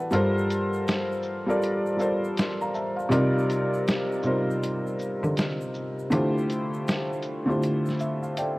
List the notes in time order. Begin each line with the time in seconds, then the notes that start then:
Already playing: E3 E4 F#4 G4 A4 D5 E5 F#5 G5 A5
0.00 B4
0.10 G2 G3 F4 A4 A#4 C5, closed hi-hat, shaker
0.38 shaker
0.50 closed hi-hat, shaker
0.73 shaker
0.88 snare, closed hi-hat, shaker
1.12 shaker
1.23 shaker
1.46 G3 F4 A4 A#4 D5, shaker
1.62 closed hi-hat, shaker
1.86 shaker
1.97 G3 F4 A4 A#4 C5, shaker
2.01 shaker
2.24 shaker
2.37 snare, closed hi-hat, shaker
2.61 F5 A#5, shaker
2.74 E5 A5, shaker
2.96 C5 F5, shaker
3.09 C3 G3 D#4 F4 A#4 D5, closed hi-hat, shaker
3.39 shaker
3.50 closed hi-hat, shaker
3.52 shaker
3.74 shaker
3.87 snare, closed hi-hat, shaker
4.12 shaker
4.23 C3 G3 D#4 F4 A#4, shaker
4.27 C5
4.51 shaker
4.63 closed hi-hat, shaker
4.87 shaker
4.99 shaker
5.02 shaker
5.23 D3, shaker
5.37 snare, closed hi-hat, shaker
5.61 shaker
5.74 shaker
5.99 shaker
6.10 D3 A3 E4 F4 G4 C5, closed hi-hat, shaker
6.38 shaker
6.50 closed hi-hat, shaker
6.52 shaker
6.73 shaker
6.87 snare, closed hi-hat, shaker
7.13 shaker
7.22 closed hi-hat, shaker
7.46 D3 A3 E4 F4 G4 C5
7.50 shaker
7.63 closed hi-hat, shaker
7.86 snare, shaker
7.99 E5, shaker
8.01 shaker
8.23 F5, shaker
8.37 A4 D5 G5, closed hi-hat, shaker